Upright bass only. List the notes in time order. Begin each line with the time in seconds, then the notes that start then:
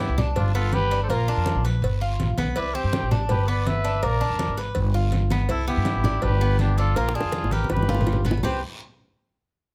0.09 C2
0.36 G1
1.09 A#1
1.37 F2
1.55 A#1
1.82 G1
2.19 A1
2.38 B1
2.56 C2
2.84 G2
3.02 A1
3.29 G1
4.03 A#1
4.30 F2
4.48 G#1
4.76 G1
5.49 C2
5.77 G2
5.95 G#1
6.23 G1
7.24 F2
7.42 G#1
7.69 G1
8.43 C2